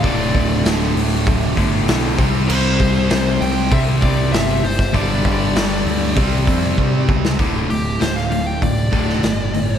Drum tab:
CC |----------------|x---------------|----------------|----------------|
HH |o-o-o-o-o-o-o-o-|--o-o-o-o-o-o-o-|o-o-o-o-o-o-----|o-o-o-o-o-o-o-o-|
SD |----o-------o---|----o-------o--o|----o----------o|----oo-----oo---|
BD |o-o-----o-o---o-|--o-----o-o----o|o-o-----o-o-o-o-|o-------o-o-----|